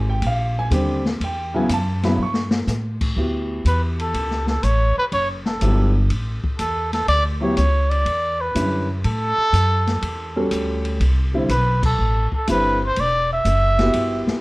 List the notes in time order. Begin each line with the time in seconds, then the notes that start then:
Already playing: G#1
0.10 G5
0.22 A#1, ride
0.27 F5
0.59 G#5
0.71 D#2 D3 G3 C4 G4, hi-hat pedal, ride
1.05 snare
1.21 E2 G5, ride
1.54 C#3 F#3 B3 E4 G#5
1.69 F#2, hi-hat pedal, ride
1.74 A5
2.03 C#3 F#3 B3 E4 B5, snare, ride
2.18 G2
2.23 C#6
2.34 snare
2.51 snare
2.67 A2, snare, hi-hat pedal
3.01 kick, crash
3.16 D2 B3 E4 F#4 G4
3.65 E2 B4, hi-hat pedal, ride
3.99 A4, ride
4.14 C#2, ride
4.31 snare
4.47 A4, snare
4.63 A1 C#5, hi-hat pedal, ride
4.97 B4, muted upright bass stroke
5.12 F#1 C#5, ride
5.45 A4, snare
5.61 G1 F#3 B3 E4 G4, hi-hat pedal, ride
6.10 A1, ride
6.44 muted upright bass stroke, kick
6.59 E2 A4, hi-hat pedal, ride
6.93 A4, snare, ride
7.08 D2 D5, ride
7.41 F#3 B3 E4 G4 C#5
7.57 C#2 C#5, hi-hat pedal, ride
7.90 D5, ride
8.06 E2, ride
8.41 B4
8.55 F#2 D3 G3 C#4 E4, hi-hat pedal, ride
9.04 A2 A4, ride
9.38 muted upright bass stroke
9.53 F#2, hi-hat pedal, ride
9.87 snare, ride
10.02 E2, ride
10.36 G3 C#4 F#4 A4
10.51 D2, hi-hat pedal, ride
10.85 ride
11.00 C2, ride
11.34 D3 G3 C4 E4
11.49 B1 B4, hi-hat pedal, ride
11.83 A4, kick, crash
11.99 A1
12.32 A4, muted upright bass stroke, kick
12.47 G1 D3 G3 C4 E4 B4, hi-hat pedal, ride
12.86 C5
12.96 E1, ride
13.00 D5
13.33 E5
13.45 F#1, hi-hat pedal, ride
13.79 B3 E4 F#4 G4, snare, ride
13.93 G1, ride
14.27 muted upright bass stroke, snare